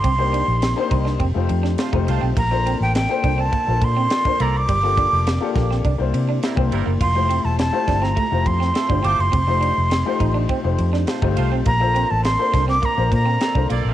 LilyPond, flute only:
\new Staff \with { instrumentName = "Flute" } { \time 4/4 \key f \mixolydian \tempo 4 = 103 c'''4.~ c'''16 r2 r16 | bes''8. g''16 g''8. a''8. c'''4 bes''16 d'''16~ | d'''4.~ d'''16 r2 r16 | c'''8. a''16 a''8. bes''8. c'''4 d'''16 c'''16~ |
c'''4.~ c'''16 r2 r16 | bes''8. a''16 c'''8. d'''16 bes''8 bes''4 r8 | }